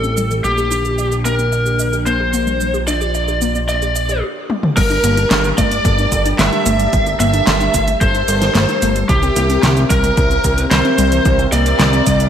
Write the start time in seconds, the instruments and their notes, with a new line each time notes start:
Already playing: analog synth bass A1, analog synth pad A3 E4 G4 C5, lead electric guitar A4
0.04 synth arpeggio sound C4, cabasa
0.17 synth arpeggio sound G3, cabasa
0.31 synth arpeggio sound E3, cabasa
0.44 analog synth bass A#1, synth arpeggio sound G3, analog synth pad A#3 D4, lead electric guitar G4, cabasa
0.58 synth arpeggio sound G4, cabasa
0.71 synth arpeggio sound D4, cabasa
0.85 synth arpeggio sound G4, cabasa
0.98 synth arpeggio sound D5, cabasa
1.12 synth arpeggio sound G4, cabasa
1.25 synth arpeggio sound A#3, lead electric guitar A#4, cabasa
1.39 synth arpeggio sound A#3, cabasa
1.52 synth arpeggio sound D5, cabasa
1.66 synth arpeggio sound G4, cabasa
1.79 synth arpeggio sound D5, cabasa
1.93 synth arpeggio sound G4, cabasa
2.07 synth arpeggio sound A#3, lead electric guitar C5, cabasa
2.20 synth arpeggio sound G4
2.34 synth arpeggio sound A#3, cabasa
2.47 synth arpeggio sound G3, cabasa
2.61 synth arpeggio sound G3, analog synth pad F4, cabasa
2.74 synth arpeggio sound G4, cabasa
2.88 synth arpeggio sound D4, lead electric guitar D5, cabasa
3.01 synth arpeggio sound G4, cabasa
3.15 synth arpeggio sound D5, cabasa
3.28 synth arpeggio sound G4, cabasa
3.42 synth arpeggio sound A#3, cabasa
3.55 synth arpeggio sound A#3, cabasa
3.69 synth arpeggio sound D5, lead electric guitar D5, cabasa
3.82 synth arpeggio sound G4, cabasa
3.96 synth arpeggio sound D5, cabasa
4.09 synth arpeggio sound G4, cabasa
4.50 high tom
4.63 mid tom
4.77 analog synth bass G1, synth arpeggio sound G3, analog synth pad G3 G4 A#4 A5, string machine A#4, lead electric guitar A#4, kick, closed hi-hat, crash, cabasa
4.90 synth arpeggio sound D4, closed hi-hat, cabasa
5.04 analog synth bass G1, synth arpeggio sound A#3, closed hi-hat, cabasa
5.17 synth arpeggio sound D4, closed hi-hat, cabasa
5.31 analog synth bass G1, synth arpeggio sound A4, snare, clap, closed hi-hat, cabasa
5.44 synth arpeggio sound D4, closed hi-hat, cabasa
5.58 analog synth bass G1, synth arpeggio sound A3, string machine D5, lead electric guitar D5, kick, closed hi-hat, cabasa
5.71 synth arpeggio sound A3, closed hi-hat, cabasa
5.85 analog synth bass G1, synth arpeggio sound A4, kick, closed hi-hat, cabasa
5.99 synth arpeggio sound D4, closed hi-hat, cabasa
6.12 analog synth bass G1, synth arpeggio sound A4, kick, closed hi-hat, cabasa
6.25 synth arpeggio sound D4, closed hi-hat, cabasa
6.39 analog synth bass G1, synth arpeggio sound A3, string machine E5, lead electric guitar E5, snare, clap, closed hi-hat, cabasa
6.52 synth arpeggio sound D4, closed hi-hat
6.66 analog synth bass G1, synth arpeggio sound A3, closed hi-hat, cabasa
6.80 synth arpeggio sound G3, closed hi-hat, cabasa
6.93 analog synth bass G1, synth arpeggio sound G3, kick, closed hi-hat, cabasa
7.07 synth arpeggio sound D4, closed hi-hat, cabasa
7.20 analog synth bass G1, synth arpeggio sound A#3, string machine E5, lead electric guitar E5, closed hi-hat, cabasa
7.34 synth arpeggio sound D4, closed hi-hat, cabasa
7.47 analog synth bass G1, synth arpeggio sound A4, snare, clap, closed hi-hat, cabasa
7.61 synth arpeggio sound D4, closed hi-hat, cabasa
7.74 analog synth bass G1, synth arpeggio sound A3, kick, closed hi-hat, cabasa
7.88 synth arpeggio sound A3, closed hi-hat, cabasa
8.01 analog synth bass G1, synth arpeggio sound A4, lead electric guitar C5, string machine C5, kick, closed hi-hat, cabasa
8.15 synth arpeggio sound D4, closed hi-hat, cabasa
8.28 analog synth bass G1, synth arpeggio sound A4, closed hi-hat, cabasa
8.42 synth arpeggio sound D4, snare, closed hi-hat, cabasa
8.55 analog synth bass G1, synth arpeggio sound A3, snare, clap, closed hi-hat, cabasa
8.69 synth arpeggio sound D4, closed hi-hat, cabasa
8.82 analog synth bass G1, synth arpeggio sound A3, closed hi-hat, cabasa
8.96 synth arpeggio sound G3, closed hi-hat, cabasa
9.09 analog synth bass C2, synth arpeggio sound E3, analog synth pad C4 G4 E5, lead electric guitar G4, string machine G4, kick, closed hi-hat, cabasa
9.23 synth arpeggio sound C4, closed hi-hat, cabasa
9.36 analog synth bass C2, synth arpeggio sound A#3, closed hi-hat, cabasa
9.50 synth arpeggio sound C4, closed hi-hat, cabasa
9.63 analog synth bass C2, synth arpeggio sound G4, snare, clap, closed hi-hat, cabasa
9.77 synth arpeggio sound C4, closed hi-hat, cabasa
9.90 analog synth bass C2, synth arpeggio sound G3, lead electric guitar A#4, string machine A#4, kick, closed hi-hat, cabasa
10.04 synth arpeggio sound G3, closed hi-hat, cabasa
10.17 analog synth bass C2, synth arpeggio sound G4, kick, closed hi-hat, cabasa
10.31 synth arpeggio sound C4, closed hi-hat, cabasa
10.44 analog synth bass C2, synth arpeggio sound G4, kick, closed hi-hat, cabasa
10.58 synth arpeggio sound C4, closed hi-hat, cabasa
10.71 analog synth bass C2, synth arpeggio sound G3, lead electric guitar C5, string machine C5, snare, clap, closed hi-hat, cabasa
10.85 synth arpeggio sound C4, closed hi-hat
10.98 analog synth bass C2, synth arpeggio sound G3, closed hi-hat, cabasa
11.12 synth arpeggio sound E3, closed hi-hat, cabasa
11.25 analog synth bass C2, synth arpeggio sound E3, kick, closed hi-hat, cabasa
11.39 synth arpeggio sound C4, closed hi-hat, cabasa
11.52 analog synth bass C2, synth arpeggio sound A#3, lead electric guitar D5, string machine D5, closed hi-hat, cabasa
11.66 synth arpeggio sound C4, closed hi-hat, cabasa
11.79 analog synth bass C2, synth arpeggio sound G4, snare, clap, closed hi-hat, cabasa
11.93 synth arpeggio sound C4, closed hi-hat, cabasa
12.06 analog synth bass C2, synth arpeggio sound G3, kick, closed hi-hat, cabasa
12.20 synth arpeggio sound G3, closed hi-hat, cabasa